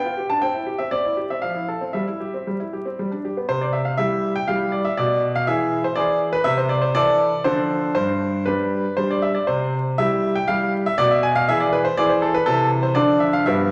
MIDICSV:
0, 0, Header, 1, 2, 480
1, 0, Start_track
1, 0, Key_signature, 0, "major"
1, 0, Tempo, 499584
1, 401, Time_signature, 3, 2, 24, 8
1, 1364, Tempo, 518583
1, 3284, Tempo, 495050
1, 6644, Tempo, 507614
1, 9044, Tempo, 497925
1, 13110, End_track
2, 0, Start_track
2, 0, Title_t, "Grand piano"
2, 0, Program_c, 0, 0
2, 0, Note_on_c, 0, 79, 96
2, 50, Note_on_c, 0, 65, 49
2, 168, Note_on_c, 0, 67, 51
2, 172, Note_off_c, 0, 65, 0
2, 242, Note_off_c, 0, 79, 0
2, 284, Note_on_c, 0, 81, 84
2, 290, Note_off_c, 0, 67, 0
2, 291, Note_on_c, 0, 62, 45
2, 400, Note_on_c, 0, 79, 82
2, 402, Note_off_c, 0, 81, 0
2, 405, Note_off_c, 0, 62, 0
2, 409, Note_on_c, 0, 60, 64
2, 520, Note_off_c, 0, 60, 0
2, 521, Note_on_c, 0, 64, 46
2, 641, Note_on_c, 0, 67, 52
2, 646, Note_off_c, 0, 64, 0
2, 722, Note_off_c, 0, 79, 0
2, 754, Note_on_c, 0, 76, 80
2, 762, Note_on_c, 0, 60, 47
2, 766, Note_off_c, 0, 67, 0
2, 871, Note_off_c, 0, 60, 0
2, 877, Note_off_c, 0, 76, 0
2, 877, Note_on_c, 0, 74, 88
2, 885, Note_on_c, 0, 60, 62
2, 999, Note_off_c, 0, 60, 0
2, 1008, Note_on_c, 0, 64, 47
2, 1096, Note_off_c, 0, 74, 0
2, 1124, Note_on_c, 0, 67, 51
2, 1131, Note_off_c, 0, 64, 0
2, 1250, Note_off_c, 0, 67, 0
2, 1252, Note_on_c, 0, 76, 72
2, 1256, Note_on_c, 0, 60, 45
2, 1360, Note_on_c, 0, 77, 81
2, 1369, Note_off_c, 0, 76, 0
2, 1370, Note_on_c, 0, 53, 54
2, 1371, Note_off_c, 0, 60, 0
2, 1482, Note_off_c, 0, 53, 0
2, 1488, Note_on_c, 0, 64, 43
2, 1608, Note_on_c, 0, 69, 50
2, 1610, Note_off_c, 0, 64, 0
2, 1727, Note_on_c, 0, 60, 47
2, 1731, Note_off_c, 0, 69, 0
2, 1837, Note_on_c, 0, 76, 69
2, 1842, Note_off_c, 0, 77, 0
2, 1846, Note_off_c, 0, 60, 0
2, 1849, Note_on_c, 0, 55, 56
2, 1965, Note_off_c, 0, 55, 0
2, 1970, Note_on_c, 0, 64, 47
2, 2090, Note_on_c, 0, 67, 49
2, 2096, Note_off_c, 0, 64, 0
2, 2217, Note_off_c, 0, 67, 0
2, 2217, Note_on_c, 0, 60, 42
2, 2337, Note_on_c, 0, 55, 50
2, 2341, Note_off_c, 0, 60, 0
2, 2420, Note_off_c, 0, 76, 0
2, 2452, Note_off_c, 0, 55, 0
2, 2454, Note_on_c, 0, 64, 44
2, 2579, Note_on_c, 0, 67, 47
2, 2580, Note_off_c, 0, 64, 0
2, 2692, Note_on_c, 0, 60, 45
2, 2702, Note_off_c, 0, 67, 0
2, 2812, Note_off_c, 0, 60, 0
2, 2819, Note_on_c, 0, 55, 54
2, 2931, Note_off_c, 0, 55, 0
2, 2932, Note_on_c, 0, 62, 38
2, 3056, Note_on_c, 0, 67, 47
2, 3057, Note_off_c, 0, 62, 0
2, 3171, Note_on_c, 0, 59, 40
2, 3177, Note_off_c, 0, 67, 0
2, 3277, Note_on_c, 0, 72, 95
2, 3280, Note_on_c, 0, 48, 66
2, 3286, Note_off_c, 0, 59, 0
2, 3400, Note_on_c, 0, 74, 65
2, 3401, Note_off_c, 0, 72, 0
2, 3510, Note_on_c, 0, 76, 70
2, 3523, Note_off_c, 0, 74, 0
2, 3628, Note_on_c, 0, 77, 73
2, 3639, Note_off_c, 0, 76, 0
2, 3751, Note_off_c, 0, 48, 0
2, 3751, Note_on_c, 0, 76, 101
2, 3759, Note_off_c, 0, 77, 0
2, 3762, Note_on_c, 0, 55, 55
2, 3764, Note_on_c, 0, 64, 53
2, 3768, Note_on_c, 0, 67, 57
2, 4085, Note_off_c, 0, 76, 0
2, 4113, Note_off_c, 0, 55, 0
2, 4114, Note_off_c, 0, 64, 0
2, 4116, Note_off_c, 0, 67, 0
2, 4120, Note_on_c, 0, 79, 89
2, 4236, Note_on_c, 0, 77, 92
2, 4245, Note_on_c, 0, 55, 54
2, 4246, Note_off_c, 0, 79, 0
2, 4247, Note_on_c, 0, 64, 49
2, 4253, Note_on_c, 0, 67, 54
2, 4461, Note_off_c, 0, 77, 0
2, 4473, Note_on_c, 0, 74, 71
2, 4595, Note_on_c, 0, 76, 84
2, 4597, Note_off_c, 0, 55, 0
2, 4598, Note_off_c, 0, 64, 0
2, 4601, Note_off_c, 0, 67, 0
2, 4605, Note_off_c, 0, 74, 0
2, 4719, Note_on_c, 0, 74, 94
2, 4726, Note_off_c, 0, 76, 0
2, 4729, Note_on_c, 0, 47, 71
2, 4941, Note_off_c, 0, 74, 0
2, 5087, Note_on_c, 0, 77, 103
2, 5198, Note_off_c, 0, 47, 0
2, 5201, Note_on_c, 0, 76, 99
2, 5209, Note_on_c, 0, 52, 60
2, 5212, Note_off_c, 0, 77, 0
2, 5214, Note_on_c, 0, 64, 64
2, 5217, Note_on_c, 0, 68, 62
2, 5555, Note_off_c, 0, 52, 0
2, 5558, Note_off_c, 0, 64, 0
2, 5560, Note_off_c, 0, 68, 0
2, 5562, Note_on_c, 0, 72, 82
2, 5566, Note_off_c, 0, 76, 0
2, 5671, Note_on_c, 0, 74, 99
2, 5680, Note_on_c, 0, 52, 58
2, 5684, Note_on_c, 0, 64, 58
2, 5686, Note_off_c, 0, 72, 0
2, 5688, Note_on_c, 0, 68, 66
2, 5890, Note_off_c, 0, 74, 0
2, 6025, Note_off_c, 0, 52, 0
2, 6028, Note_off_c, 0, 64, 0
2, 6030, Note_off_c, 0, 68, 0
2, 6030, Note_on_c, 0, 71, 108
2, 6142, Note_on_c, 0, 76, 127
2, 6153, Note_on_c, 0, 48, 84
2, 6157, Note_off_c, 0, 71, 0
2, 6273, Note_off_c, 0, 76, 0
2, 6273, Note_on_c, 0, 72, 87
2, 6384, Note_on_c, 0, 74, 92
2, 6398, Note_off_c, 0, 72, 0
2, 6505, Note_on_c, 0, 72, 81
2, 6514, Note_off_c, 0, 74, 0
2, 6624, Note_off_c, 0, 48, 0
2, 6632, Note_on_c, 0, 74, 125
2, 6635, Note_off_c, 0, 72, 0
2, 6640, Note_on_c, 0, 52, 67
2, 6644, Note_on_c, 0, 64, 69
2, 6651, Note_on_c, 0, 69, 75
2, 6982, Note_off_c, 0, 52, 0
2, 6985, Note_off_c, 0, 64, 0
2, 6990, Note_off_c, 0, 69, 0
2, 7074, Note_off_c, 0, 74, 0
2, 7102, Note_on_c, 0, 72, 102
2, 7107, Note_on_c, 0, 53, 57
2, 7109, Note_on_c, 0, 50, 86
2, 7115, Note_on_c, 0, 62, 58
2, 7121, Note_on_c, 0, 69, 63
2, 7552, Note_off_c, 0, 72, 0
2, 7554, Note_off_c, 0, 53, 0
2, 7559, Note_off_c, 0, 62, 0
2, 7562, Note_off_c, 0, 69, 0
2, 7578, Note_on_c, 0, 72, 107
2, 7579, Note_off_c, 0, 50, 0
2, 7588, Note_on_c, 0, 43, 68
2, 8059, Note_on_c, 0, 71, 89
2, 8063, Note_off_c, 0, 43, 0
2, 8071, Note_on_c, 0, 55, 58
2, 8073, Note_off_c, 0, 72, 0
2, 8073, Note_on_c, 0, 62, 53
2, 8077, Note_on_c, 0, 67, 57
2, 8423, Note_off_c, 0, 55, 0
2, 8425, Note_off_c, 0, 62, 0
2, 8427, Note_off_c, 0, 67, 0
2, 8516, Note_off_c, 0, 71, 0
2, 8542, Note_on_c, 0, 72, 89
2, 8549, Note_on_c, 0, 55, 50
2, 8556, Note_on_c, 0, 62, 52
2, 8557, Note_on_c, 0, 67, 49
2, 8673, Note_on_c, 0, 74, 80
2, 8674, Note_off_c, 0, 72, 0
2, 8783, Note_on_c, 0, 76, 85
2, 8800, Note_off_c, 0, 74, 0
2, 8900, Note_off_c, 0, 55, 0
2, 8900, Note_on_c, 0, 74, 81
2, 8904, Note_off_c, 0, 62, 0
2, 8905, Note_off_c, 0, 67, 0
2, 8914, Note_off_c, 0, 76, 0
2, 9019, Note_on_c, 0, 72, 89
2, 9031, Note_off_c, 0, 74, 0
2, 9031, Note_on_c, 0, 48, 72
2, 9315, Note_off_c, 0, 72, 0
2, 9505, Note_off_c, 0, 48, 0
2, 9511, Note_on_c, 0, 76, 113
2, 9519, Note_on_c, 0, 55, 58
2, 9524, Note_on_c, 0, 64, 60
2, 9527, Note_on_c, 0, 67, 65
2, 9868, Note_off_c, 0, 55, 0
2, 9870, Note_on_c, 0, 79, 97
2, 9871, Note_off_c, 0, 64, 0
2, 9874, Note_off_c, 0, 67, 0
2, 9879, Note_off_c, 0, 76, 0
2, 9987, Note_on_c, 0, 77, 111
2, 9998, Note_on_c, 0, 55, 63
2, 9999, Note_off_c, 0, 79, 0
2, 9999, Note_on_c, 0, 64, 57
2, 10007, Note_on_c, 0, 67, 64
2, 10209, Note_off_c, 0, 77, 0
2, 10348, Note_off_c, 0, 55, 0
2, 10349, Note_off_c, 0, 64, 0
2, 10353, Note_off_c, 0, 67, 0
2, 10360, Note_on_c, 0, 76, 105
2, 10472, Note_on_c, 0, 74, 127
2, 10482, Note_on_c, 0, 47, 90
2, 10484, Note_off_c, 0, 76, 0
2, 10598, Note_on_c, 0, 76, 94
2, 10600, Note_off_c, 0, 74, 0
2, 10715, Note_on_c, 0, 80, 105
2, 10723, Note_off_c, 0, 76, 0
2, 10835, Note_on_c, 0, 77, 121
2, 10841, Note_off_c, 0, 80, 0
2, 10949, Note_off_c, 0, 47, 0
2, 10961, Note_off_c, 0, 77, 0
2, 10961, Note_on_c, 0, 76, 122
2, 10968, Note_on_c, 0, 52, 75
2, 10972, Note_on_c, 0, 64, 73
2, 10977, Note_on_c, 0, 68, 81
2, 11073, Note_on_c, 0, 74, 92
2, 11082, Note_off_c, 0, 76, 0
2, 11193, Note_on_c, 0, 71, 97
2, 11197, Note_off_c, 0, 74, 0
2, 11308, Note_off_c, 0, 52, 0
2, 11308, Note_on_c, 0, 72, 98
2, 11311, Note_off_c, 0, 64, 0
2, 11314, Note_off_c, 0, 68, 0
2, 11316, Note_off_c, 0, 71, 0
2, 11432, Note_on_c, 0, 74, 120
2, 11433, Note_off_c, 0, 72, 0
2, 11442, Note_on_c, 0, 52, 72
2, 11444, Note_on_c, 0, 64, 64
2, 11448, Note_on_c, 0, 68, 74
2, 11546, Note_on_c, 0, 72, 87
2, 11554, Note_off_c, 0, 74, 0
2, 11669, Note_on_c, 0, 69, 86
2, 11671, Note_off_c, 0, 72, 0
2, 11782, Note_off_c, 0, 52, 0
2, 11784, Note_off_c, 0, 64, 0
2, 11786, Note_off_c, 0, 68, 0
2, 11788, Note_on_c, 0, 71, 107
2, 11791, Note_off_c, 0, 69, 0
2, 11900, Note_on_c, 0, 69, 111
2, 11909, Note_on_c, 0, 52, 63
2, 11910, Note_off_c, 0, 71, 0
2, 11912, Note_on_c, 0, 48, 89
2, 11914, Note_on_c, 0, 64, 60
2, 12117, Note_off_c, 0, 69, 0
2, 12254, Note_on_c, 0, 72, 82
2, 12349, Note_off_c, 0, 52, 0
2, 12351, Note_off_c, 0, 64, 0
2, 12370, Note_on_c, 0, 74, 111
2, 12375, Note_off_c, 0, 48, 0
2, 12379, Note_on_c, 0, 50, 90
2, 12379, Note_on_c, 0, 53, 65
2, 12382, Note_off_c, 0, 72, 0
2, 12387, Note_on_c, 0, 62, 64
2, 12391, Note_on_c, 0, 69, 66
2, 12614, Note_on_c, 0, 76, 90
2, 12623, Note_off_c, 0, 74, 0
2, 12741, Note_on_c, 0, 77, 110
2, 12746, Note_off_c, 0, 76, 0
2, 12834, Note_off_c, 0, 53, 0
2, 12838, Note_off_c, 0, 62, 0
2, 12840, Note_off_c, 0, 69, 0
2, 12858, Note_off_c, 0, 50, 0
2, 12863, Note_on_c, 0, 76, 98
2, 12871, Note_off_c, 0, 77, 0
2, 12873, Note_on_c, 0, 43, 82
2, 12874, Note_on_c, 0, 53, 53
2, 12880, Note_on_c, 0, 59, 60
2, 12882, Note_on_c, 0, 67, 54
2, 13110, Note_off_c, 0, 43, 0
2, 13110, Note_off_c, 0, 53, 0
2, 13110, Note_off_c, 0, 59, 0
2, 13110, Note_off_c, 0, 67, 0
2, 13110, Note_off_c, 0, 76, 0
2, 13110, End_track
0, 0, End_of_file